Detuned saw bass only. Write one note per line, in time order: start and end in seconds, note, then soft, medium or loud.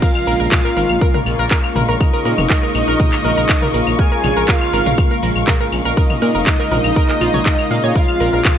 0.27 0.35 A#1 medium
0.40 0.47 A#1 medium
0.77 0.84 G#1 loud
0.90 0.97 A#1 medium
1.26 1.34 A#1 medium
1.39 1.46 A#1 medium
1.76 1.84 A#1 medium
1.89 1.96 A#1 medium
2.25 2.33 A#2 medium
2.38 2.45 F1 medium
2.75 2.83 A#1 medium
2.88 2.95 A#1 medium
3.24 3.32 A#1 medium
3.37 3.45 A#1 medium
3.74 3.82 A#1 medium
3.87 3.94 A#1 medium
4.24 4.31 A#1 loud
4.37 4.44 A#1 medium
4.73 4.81 G#1 medium
4.86 4.93 A#1 medium
5.23 5.31 A#1 medium
5.36 5.43 A#1 medium
5.72 5.80 A#1 loud
5.85 5.92 A#1 medium
6.22 6.30 A#2 medium
6.35 6.42 F1 medium
6.72 6.79 A#1 medium
6.84 6.92 A#1 medium
7.21 7.29 A#1 medium
7.34 7.41 A#1 medium
7.71 7.78 A#2 medium
7.84 7.91 A#2 medium
8.20 8.28 A#1 loud
8.33 8.40 A#1 medium